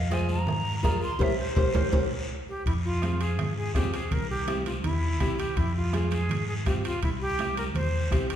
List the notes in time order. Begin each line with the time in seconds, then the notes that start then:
Already playing: F2 F5
0.10 F4 G#4 C5 G#5, bombo rim, cowbell, high conga, short guiro
0.29 A#5, high conga, short guiro
0.47 G#2, bombo rim, cowbell, low conga, long guiro
0.83 F2 F4 G#4 A#4, bombo low, bombo rim, cowbell, high conga, low timbale, short guiro
1.02 C6, short guiro
1.19 C2 G4 A#4 C5 E5, bombo low, high conga, high timbale, long guiro
1.39 C5
1.55 C2 G4 A#4 C5, bombo low, high conga, high timbale, long guiro
1.74 C2 G4 A#4 C5, bombo low, high conga, high timbale, long guiro
1.92 C2 G4 A#4 C5, bombo low, high conga, high timbale, long guiro
2.49 G4
2.66 F2 E4, bombo low, high timbale, long guiro
2.85 F4
3.02 C4 F4 G#4, bombo rim, high conga, high timbale, short guiro
3.20 G#4, high timbale, short guiro
3.39 G#2, bombo rim, low conga, high timbale, long guiro
3.57 G#4
3.75 F2 C4 F4 G4 G#4, bombo low, bombo rim, high conga, high timbale, low timbale, short guiro
3.94 G#4, high timbale, short guiro
4.11 C2 A#4, bombo low, low conga, high timbale, long guiro
4.30 G4
4.47 C4 E4 G4, bombo rim, high conga, high timbale, short guiro
4.66 F4, high conga, high timbale, short guiro
4.83 E2 E4, low conga, high timbale, long guiro
5.20 C2 C4 E4 G4, bombo low, bombo rim, high conga, low conga, high timbale, short guiro
5.39 G4, high timbale, short guiro
5.57 F2 E4, bombo low, high timbale, long guiro
5.76 F4
5.93 C4 F4 G#4, bombo rim, high conga, high timbale, short guiro
6.11 G#4, high conga, high timbale, short guiro
6.29 G#2, low conga, high timbale, long guiro
6.48 G#4
6.66 G2 C4 F4 G4, bombo low, bombo rim, high conga, high timbale, short guiro
6.84 F4, high timbale, short guiro
7.03 C2 E4, bombo low, high timbale, long guiro
7.21 G4
7.38 C4 E4 G4, bombo rim, high conga, high timbale, short guiro
7.57 A#4, high conga, high timbale, short guiro
7.75 E2 C5, low conga, high timbale, long guiro
8.11 C2 C4 E4 G4, bombo low, bombo rim, high conga, low conga, high timbale, short guiro
8.30 G4, high timbale, short guiro